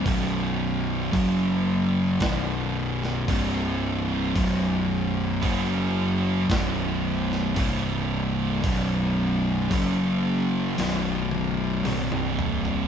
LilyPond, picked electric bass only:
\new Staff \with { instrumentName = "Picked electric bass" } { \clef bass \time 4/4 \key fis \phrygian \tempo 4 = 56 b,,,4 fis,,4 b,,,4 c,,4 | b,,,4 fis,,4 b,,,4 c,,4 | b,,,4 fis,,4 b,,,4 c,,4 | }